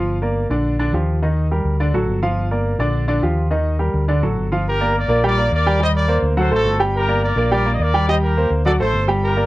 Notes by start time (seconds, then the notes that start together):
Already playing: G1 F3 F4 F5
0.22 A#3 A#4 D5
0.49 A#1 D3 D4 D5
0.79 D3 D4 D5
0.93 D#2 F3 F4 G4
1.22 D#3 D#4 D#5
1.51 G3 G4 A#4
1.64 D2
1.80 D3 D4 D5
1.93 A1 F#3 F#4 A4
2.07 G1
2.22 F3 F4 F5
2.51 A#3 A#4 D5
2.79 A#1 D3 D4 D5
3.08 D3 D4 D5
3.22 D#2 F3 F4 G4
3.51 D#3 D#4 D#5
3.79 G3 G4 A#4
3.94 D2
4.08 D3 D4 D5
4.22 A1 F#3 F#4 A4
4.37 G1
4.52 F3 F4 F5
4.68 G4 A#4
4.80 A#3 A#4 D5
4.96 A#4 D5
5.08 A#1 A#3 A#4 D5
5.24 G3 G4 A#4 D5 G5
5.38 A#3 A#4 D5
5.51 D#2 A#4 D5
5.66 G3 G4 G5
5.80 G3 G4 C5 D#5 G5
5.96 A#4 D5
6.08 A#3 A#4 C5
6.22 D2
6.37 F#3 F#4 A4 C5 F#5
6.50 A1 A3 F#4 A4 C5
6.65 G1
6.80 G3 G4 G5
6.96 G4 A#4
7.08 A#3 A#4 D5
7.24 A#4 D5
7.36 A#1 A#3 A#4 D5
7.51 G3 G4 A#4 D5 G5
7.66 A#3 A#4 D5
7.74 D#5
7.79 D#2 A#4 D5
7.94 G3 G4 G5
8.09 G3 G4 C5 D#5 G5
8.23 G4 A#4
8.37 A#3 A#4 C5
8.50 D2
8.66 F#3 F#4 A4 D5 F#5
8.79 A1 A3 A4 C5
8.93 G1
9.08 G3 G4 G5
9.24 G4 A#4
9.36 A#3 A#4 D5